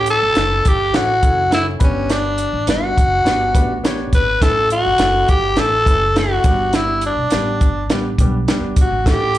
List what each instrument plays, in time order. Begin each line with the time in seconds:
Already playing: upright bass A1
0.06 tenor saxophone A4, closed hi-hat
0.22 upright bass G1
0.35 upright bass F#1, grand piano C#4 E4 A4 C#5, snare, closed hi-hat
0.65 upright bass G1, tenor saxophone G4, kick, closed hi-hat
0.93 upright bass A1, grand piano C#4 E4 A4 C#5, tenor saxophone F#4, snare, closed hi-hat
1.22 upright bass F#1, grand piano C#4 E4 A4 C#5, kick, closed hi-hat
1.50 grand piano C#4 E4 A4 C#5, snare, closed hi-hat
1.54 tenor saxophone E4
1.79 upright bass G1, grand piano B3 D4 G4 B4, kick, closed hi-hat
1.83 tenor saxophone C#4
2.10 tenor saxophone D4, snare, closed hi-hat
2.38 closed hi-hat
2.53 upright bass A1
2.67 upright bass G1, grand piano G3 B3 D4 B4, tenor saxophone F#4, snare, closed hi-hat
2.98 upright bass F#1, kick, closed hi-hat
3.25 upright bass G1, grand piano B3 D4 G4 B4, snare, closed hi-hat
3.54 upright bass A1, grand piano B3 D4 G4 B4, kick, closed hi-hat
3.84 grand piano B3 D4 G4 C#5, snare, closed hi-hat
4.13 upright bass G#1, tenor saxophone B4, kick, snare, closed hi-hat
4.42 upright bass A1, grand piano A3 C#4 E4 A4, tenor saxophone A4, kick, snare, closed hi-hat
4.70 tenor saxophone F#4, closed hi-hat
4.85 upright bass G1
4.98 upright bass F#1, grand piano A3 C#4 E4 A4, snare, closed hi-hat
5.28 upright bass G1, tenor saxophone G4, kick, closed hi-hat
5.56 upright bass A1, grand piano A3 C#4 E4 A4, tenor saxophone A4, snare, closed hi-hat
5.86 upright bass F#1, grand piano A3 C#4 E4 B4, kick, closed hi-hat
6.15 grand piano A3 C#4 E4 A4, tenor saxophone F#4, snare, closed hi-hat
6.44 upright bass G1, grand piano G3 B3 D4 G4, kick, snare, closed hi-hat
6.73 tenor saxophone E4, snare, closed hi-hat
7.01 closed hi-hat
7.06 tenor saxophone D4
7.16 upright bass B1
7.30 upright bass A1, grand piano G3 B3 D4 G4, snare, closed hi-hat
7.61 upright bass G1, kick, closed hi-hat
7.88 upright bass A1, grand piano G3 B3 D4 G4, snare, closed hi-hat
8.18 upright bass B1, grand piano G3 B3 D4 G4, kick, closed hi-hat
8.48 grand piano G3 B3 D4 G4, snare, closed hi-hat
8.61 upright bass G1
8.76 upright bass G1, kick, closed hi-hat
8.81 tenor saxophone F#4
8.91 upright bass G#1
9.06 upright bass A1, grand piano A3 C#4 E4 A4, kick, snare, closed hi-hat
9.11 tenor saxophone G4
9.35 closed hi-hat